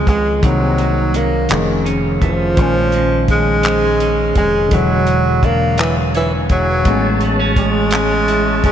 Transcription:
Already playing: C#3 D#3 F3 G#3 C4 F4
0.07 C#2 G#3, kick, closed hi-hat
0.37 G#3
0.41 C2 C3 D#3 F#3 A#3 C4, kick, closed hi-hat
0.45 D#4
0.78 A#3, closed hi-hat
1.14 F#3 A#3, closed hi-hat
1.49 F1 F2 D#3 F3 A3 G#4, clap, closed hi-hat
1.53 C#4
1.85 C#4, closed hi-hat
2.21 F1 F3 A3, kick, closed hi-hat
2.54 A#2 D#3 F3 G#3, kick, closed hi-hat
2.58 A#1 C#4 C5
2.92 G#3, closed hi-hat
3.28 D#3 G#3, kick, closed hi-hat
3.63 G#3, clap, closed hi-hat
4.00 C#4, closed hi-hat
4.35 F1 G#3, kick, closed hi-hat
4.68 D3 F#3 G#3, kick, closed hi-hat
4.73 E1 B2 E3 F#3 C#5
5.07 G#4, closed hi-hat
5.43 A#3 D4, kick, closed hi-hat
5.78 E3 G#4, clap, closed hi-hat
6.15 E3 C#5, closed hi-hat
6.50 E1 F#3 G#4, kick, closed hi-hat
6.82 A2 E3 G#3 C#5 A5, kick, closed hi-hat
6.87 A1 B3 C#4
7.21 B3, closed hi-hat
7.39 C#4
7.56 G#3, kick, closed hi-hat
7.91 C#4, clap, closed hi-hat
8.28 E4, closed hi-hat
8.64 F#1 G#3 C#4, kick, closed hi-hat

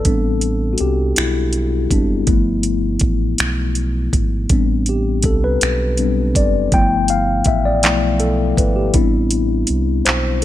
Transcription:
Already playing: A4
0.05 A1 G3 B3 C4 D4, kick, closed hi-hat
0.41 closed hi-hat
0.73 F#4
0.78 C2 G4, closed hi-hat
1.16 B1 E4, finger snap, closed hi-hat
1.53 closed hi-hat
1.91 F#1 G3 B3 C4 D4, kick, closed hi-hat
2.27 G1 F3 A3 B3 E4, kick, closed hi-hat
2.63 closed hi-hat
2.99 A1, kick, closed hi-hat
3.38 B1, finger snap, closed hi-hat
3.75 closed hi-hat
4.13 G#1, kick, closed hi-hat
4.49 A1 G3 B3 C4 D4, kick, closed hi-hat
4.86 G4, closed hi-hat
5.23 C2 A4, kick, closed hi-hat
5.44 B4
5.61 B1, finger snap, closed hi-hat
5.97 G3 B3 C4 D4, closed hi-hat
6.35 F#1 D5, kick, closed hi-hat
6.72 G1 F3 A3 B3 E4 G5, kick, closed hi-hat
7.08 F5, closed hi-hat
7.44 A1 E5, kick, closed hi-hat
7.65 D5
7.83 B1 F3 A3 B3 E4, clap, closed hi-hat
8.20 A4, closed hi-hat
8.57 G#1 B4, kick, closed hi-hat
8.76 G4
8.94 A1 G3 B3 C4 D4 E4, kick, closed hi-hat
9.31 closed hi-hat
9.67 C2, closed hi-hat
10.05 B1 C5, clap, closed hi-hat

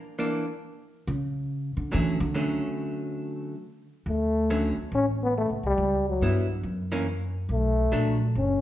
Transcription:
0.19 E3 A#3 D4
1.07 C#3
1.77 D3
1.92 D3 E3 F#3 A3 C#4
2.20 D3
2.34 D3 F#3 A3 C#4
4.06 D2 A3
4.50 D3 F#3 A3 C#4
4.77 muted upright bass stroke
4.92 A1 C#4
5.24 B3
5.38 A3
5.50 C#2
5.63 C2 G3
5.78 C#2
6.10 F#3
6.21 G2 G3 B3 E4
6.63 F#2
6.92 E3 A#3 C#4
7.49 B1 A3
7.92 A#1 F#3 A3 D4
8.35 F#1 C#4

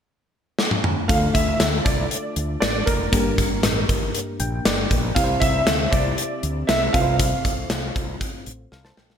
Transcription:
0.59 snare
0.71 high tom
0.84 mid tom
1.08 D2 D3 A3 D4 F4 A4 F5, kick, closed hi-hat
1.34 D2 E5, kick, closed hi-hat
1.60 D2, snare, closed hi-hat
1.85 C2 D5, kick, closed hi-hat
2.11 closed hi-hat
2.36 D2, closed hi-hat
2.60 A1 D5, snare, closed hi-hat
2.86 F1 A#4, kick, closed hi-hat
3.12 G1 G2 A#3 D4 G4 A4, kick, closed hi-hat
3.20 A#4
3.38 G1, kick, closed hi-hat
3.63 A1, snare, closed hi-hat
3.89 G1, kick, closed hi-hat
4.15 closed hi-hat
4.40 A#1 G5, closed hi-hat
4.65 G1 D5, snare, closed hi-hat
4.91 A#1, kick, closed hi-hat
5.15 C2 C3 C4 E4 G4 A#4 F5, kick, closed hi-hat
5.24 C5
5.40 C2 E5, kick, closed hi-hat
5.67 D2, snare, closed hi-hat
5.91 C2 D5, kick, closed hi-hat
6.18 closed hi-hat
6.43 D2, closed hi-hat
6.67 C2 E5, snare, closed hi-hat
6.93 C2 C3 C4 F4 A4 B4 F5, kick, closed hi-hat
7.01 C5
7.20 kick, closed hi-hat
7.45 C2, kick, closed hi-hat
7.70 C2, snare, closed hi-hat
7.96 C2, kick, closed hi-hat
8.21 kick, closed hi-hat
8.46 A1, closed hi-hat
8.72 C2 A4 F5, snare
8.85 C5 A5, snare
8.97 A#1 G5, snare
9.10 A4 F5, snare

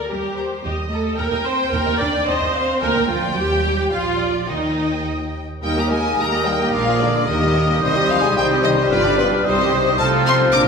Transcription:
0.10 D#2 G3 G4 A#4
0.37 C5 A#5
0.64 D#2 G3 G4 D#5
0.91 A3 A4 A#5
1.18 D#2 A#3 A#4 G5 A#5
1.31 D#2 D#5
1.45 C4 C5
1.72 D#2 A#3 A#4 A#5
1.86 D#2 D#5
2.00 D#2 D4 D5 G5
2.13 D#2 D#5
2.27 D#2 C4 C5 D#5 A5
2.41 D#2 D#5
2.55 F5
2.81 D2 A#3 A#4 G5 G#5
2.96 D2 D5
3.09 D2 F3 F4 F5
3.23 D2 D5
3.36 D#2 G3 G4 G5
3.92 A#1 F3 F4 D5 F5
4.20 D5
4.49 D#2 D#3 D#4 D#5 G5
5.62 D#2 G3 A#3 D#4 G4 A#4 G5 D#6
5.76 A#3 G4 D#5 A#5
5.90 G3 G#3 D#4 A#4 G#5
6.04 A#3 G4 D#5
6.18 D#2 G3 A#3 D#4 A#4 A#5
6.32 A#3 G4 D#5
6.45 G3 D#4 A#4 G5
6.59 A#3 G4 D#5
6.73 A#1 A#2 F3 G#3 D4 F4 G#4 A#4 F5 D6
6.87 A#3 F4 G#4 D5
7.00 D3 G#3 D4 F4 A#4 D5
7.14 A#3 F4 G#4 D5
7.27 D#2 D#3 A#3 D#4 G4 A#4 D#5 D#6
7.41 G3 A#3 G4 D#5
7.54 A#3 D#4 A#4
7.68 G3 A#3 G4 D#5
7.81 C2 C3 D#3 G3 D#4 C5 D#5
7.95 G3 C4 G4 D#5
8.09 D#3 F3 D#4 C5 F5
8.21 G3 G#3 C4 G4 D#5 G#5
8.34 C2 C3 D#3 G3 D#4 C5 G5
8.50 G3 C4 G4 D#5
8.62 D#3 D#4 C5 D#5
8.76 C3 G3 C4 G4 C5 D#5
8.89 G1 G2 D3 F3 F4 B4 D5 F6
9.04 G3 D4 G4 D5
9.16 B2 F3 F4 B4
9.31 G3 D4 G4 D5
9.45 C2 C3 G3 D#4 G4 C5 D#6
9.59 D#3 C4 G4 D#5
9.72 G3 D#4 C5
9.86 D#3 C4 G4 D#5
9.99 C2 C3 F3 A3 C4 D#4 F4 A4 A5 F6
10.27 C4 C6
10.53 A#1 A#2 D3 D4 F4 G4 A#4 D6

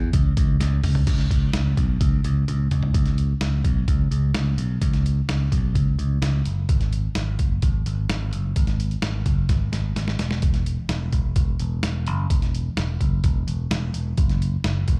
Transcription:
0.13 C#2, kick, closed hi-hat
0.37 C#2, kick, closed hi-hat
0.60 C#2, snare, closed hi-hat
0.84 C#2, mid tom, open hi-hat
0.95 floor tom
1.07 C#2, kick, closed hi-hat, crash
1.19 snare
1.31 C#2, kick, closed hi-hat
1.53 C#2, snare, closed hi-hat
1.77 B1, kick, closed hi-hat
2.01 C#2, kick, closed hi-hat
2.24 C#2, closed hi-hat
2.48 C#2, closed hi-hat, high tom
2.71 C#2, closed hi-hat, mid tom
2.83 floor tom
2.94 C#2, kick, closed hi-hat
3.06 snare, closed hi-hat
3.18 closed hi-hat
3.41 C#2, snare, closed hi-hat
3.64 B1, kick, closed hi-hat
3.88 C#2, kick, closed hi-hat
4.11 C#2, closed hi-hat
4.35 C#2, snare, closed hi-hat
4.58 B1, closed hi-hat
4.82 C#2, kick, closed hi-hat
4.94 snare, closed hi-hat
5.06 closed hi-hat
5.29 C#2, snare, closed hi-hat
5.52 B1, kick, closed hi-hat
5.75 C#2, kick, closed hi-hat
5.99 C#2, closed hi-hat
6.22 C#2, snare, closed hi-hat
6.45 F#1, closed hi-hat
6.69 G#1, kick, closed hi-hat
6.81 snare, closed hi-hat
6.93 closed hi-hat
7.15 G#1, snare, closed hi-hat
7.39 F#1, kick, closed hi-hat
7.62 G#1, kick, closed hi-hat
7.86 G#1, closed hi-hat
8.09 G#1, snare, closed hi-hat
8.33 F#1, closed hi-hat
8.56 G#1, kick, closed hi-hat
8.67 snare, closed hi-hat
8.80 closed hi-hat
8.91 closed hi-hat
9.02 G#1, snare, closed hi-hat
9.26 F#1, kick, closed hi-hat
9.49 G#1, kick, snare, closed hi-hat
9.72 G#1, snare, closed hi-hat
9.96 G#1, snare, closed hi-hat
10.08 snare
10.19 E1, snare, closed hi-hat
10.31 snare
10.42 kick, closed hi-hat
10.54 snare, closed hi-hat
10.66 closed hi-hat
10.89 E1, snare, closed hi-hat
11.13 E1, kick, closed hi-hat
11.36 E1, kick, closed hi-hat
11.60 E1, closed hi-hat
11.83 E1, snare, closed hi-hat
12.07 F#1, closed hi-hat
12.30 E1, kick, closed hi-hat
12.42 snare, closed hi-hat
12.55 closed hi-hat
12.77 E1, snare, closed hi-hat
13.01 F#1, kick, closed hi-hat
13.24 E1, kick, closed hi-hat
13.47 E1, closed hi-hat
13.71 E1, snare, closed hi-hat
13.94 E1, closed hi-hat
14.17 F#1, kick, closed hi-hat
14.29 snare, closed hi-hat
14.42 closed hi-hat
14.64 F#1, snare, closed hi-hat
14.88 E1, kick, closed hi-hat

